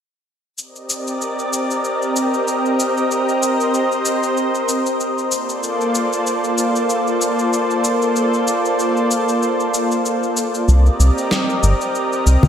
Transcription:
0.57 5.27 C4 medium
0.57 5.27 G4 medium
0.57 5.27 A#4 medium
0.57 3.07 D5 medium
0.57 5.27 D#5 medium
0.57 shaker soft
0.76 shaker soft
0.90 shaker medium
1.07 shaker soft
1.21 shaker soft
1.39 shaker soft
1.53 shaker medium
1.71 shaker soft
1.84 shaker soft
2.02 shaker soft
2.16 shaker medium
2.34 shaker soft
2.48 shaker soft
2.66 shaker soft
2.80 shaker medium
2.97 shaker soft
3.10 5.29 C5 medium
3.10 shaker soft
3.29 shaker soft
3.43 shaker medium
3.60 shaker soft
3.74 shaker soft
3.92 shaker soft
4.05 shaker medium
4.23 shaker soft
4.37 shaker soft
4.55 shaker soft
4.69 shaker medium
4.86 shaker soft
5.00 shaker soft
5.18 shaker soft
5.30 10.64 A#3 medium
5.30 10.63 F4 medium
5.30 10.63 A4 medium
5.30 10.64 C5 medium
5.30 10.63 D5 medium
5.30 shaker medium
5.49 shaker soft
5.63 shaker soft
5.81 shaker soft
5.95 shaker medium
6.13 shaker soft
6.27 shaker soft
6.44 shaker soft
6.58 shaker medium
6.76 shaker soft
6.90 shaker soft
7.07 shaker soft
7.21 shaker medium
7.39 shaker soft
7.53 shaker soft
7.71 shaker soft
7.84 shaker medium
8.02 shaker soft
8.16 shaker soft
8.34 shaker soft
8.48 shaker medium
8.65 shaker soft
8.79 shaker soft
8.97 shaker soft
9.11 shaker medium
9.29 shaker soft
9.43 shaker soft
9.60 shaker soft
9.74 shaker medium
9.92 shaker soft
10.06 shaker soft
10.23 shaker soft
10.37 shaker medium
10.55 shaker soft
10.68 10.89 C2 medium
10.68 12.48 C4 medium
10.68 12.48 G4 medium
10.68 12.48 A#4 medium
10.68 12.48 D5 medium
10.68 12.48 D#5 medium
10.68 shaker soft
10.86 shaker soft
10.99 11.10 C2 medium
10.99 shaker medium
11.18 shaker soft
11.31 snare medium
11.31 shaker soft
11.50 shaker soft
11.62 11.73 G1 medium
11.62 shaker medium
11.81 shaker soft
11.95 shaker soft
12.13 shaker soft
12.26 12.37 C2 medium
12.26 shaker medium
12.43 high conga medium
12.43 shaker soft

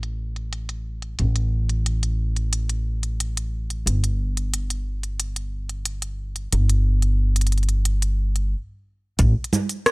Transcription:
0.00 1.16 A1 medium
0.00 closed hi-hat soft
0.36 closed hi-hat soft
0.53 closed hi-hat medium
0.69 closed hi-hat soft
1.02 closed hi-hat soft
1.19 3.83 A1 medium
1.19 closed hi-hat medium
1.36 closed hi-hat soft
1.69 closed hi-hat soft
1.86 closed hi-hat medium
2.03 closed hi-hat soft
2.36 closed hi-hat soft
2.53 closed hi-hat soft
2.69 closed hi-hat soft
3.03 closed hi-hat soft
3.20 closed hi-hat medium
3.37 closed hi-hat soft
3.70 closed hi-hat soft
3.86 6.49 G1 medium
3.86 closed hi-hat medium
4.04 closed hi-hat soft
4.37 closed hi-hat soft
4.54 closed hi-hat medium
4.70 closed hi-hat soft
5.03 closed hi-hat soft
5.20 closed hi-hat soft
5.36 closed hi-hat soft
5.69 closed hi-hat soft
5.85 closed hi-hat medium
6.02 closed hi-hat soft
6.36 closed hi-hat soft
6.53 8.53 G1 medium
6.53 closed hi-hat medium
6.70 closed hi-hat soft
7.02 closed hi-hat soft
7.36 closed hi-hat soft
7.41 closed hi-hat soft
7.47 closed hi-hat soft
7.52 closed hi-hat soft
7.58 closed hi-hat soft
7.63 closed hi-hat soft
7.69 closed hi-hat soft
7.85 closed hi-hat medium
8.02 closed hi-hat soft
8.36 closed hi-hat soft
9.19 9.31 A1 medium
9.19 kick loud
9.19 closed hi-hat medium
9.19 cabasa soft
9.44 closed hi-hat soft
9.53 low conga medium
9.53 cabasa medium
9.69 closed hi-hat soft
9.69 cabasa soft
9.86 cross-stick medium
9.86 closed hi-hat medium
9.86 cabasa soft

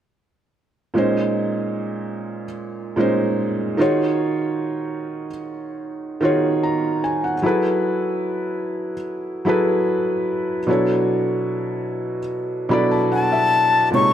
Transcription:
0.94 2.44 A#2 medium
0.94 2.44 G#3 medium
0.94 2.45 C#4 medium
0.94 2.45 D#4 medium
0.98 2.46 C5 medium
2.96 3.78 A#2 medium
2.96 3.78 G#3 medium
2.96 3.79 C#4 medium
2.96 3.76 D#4 medium
3.00 3.80 C5 medium
3.77 5.27 D#3 medium
3.77 5.28 D#4 medium
3.77 5.28 F4 medium
3.77 5.29 F#4 medium
3.77 5.29 G#4 medium
3.81 5.29 C#5 medium
6.21 7.33 D#3 medium
6.21 7.34 D#4 medium
6.21 7.34 F4 medium
6.21 7.35 F#4 medium
6.21 7.35 G#4 medium
6.25 7.35 C#5 medium
6.63 7.01 A#5 medium
7.04 7.23 G#5 medium
7.24 7.62 F#5 medium
7.42 8.92 F#3 medium
7.42 8.93 E4 medium
7.42 8.93 G#4 medium
7.42 8.94 A4 medium
7.46 8.94 B4 medium
9.45 10.58 F#3 medium
9.45 10.58 E4 medium
9.45 10.59 G#4 medium
9.45 10.59 A4 medium
9.49 10.60 B4 medium
10.67 12.17 B2 medium
10.67 12.17 F#3 medium
10.67 12.17 D4 medium
10.67 12.18 E4 medium
10.67 12.18 A4 medium
10.71 12.19 C#5 medium
12.69 13.82 B2 medium
12.69 13.82 F#3 medium
12.69 13.83 D4 medium
12.69 13.83 E4 medium
12.69 13.84 A4 medium
12.69 12.90 B5 medium
12.73 13.84 D5 medium
12.91 13.10 A5 medium
13.12 13.30 F#5 medium
13.12 13.89 A5 loud
13.32 13.89 E5 medium
13.91 14.13 A#2 medium
13.91 14.13 C3 medium
13.91 14.13 G#3 medium
13.91 14.13 D#4 medium
13.91 14.13 C#6 loud
13.95 14.13 C#5 medium

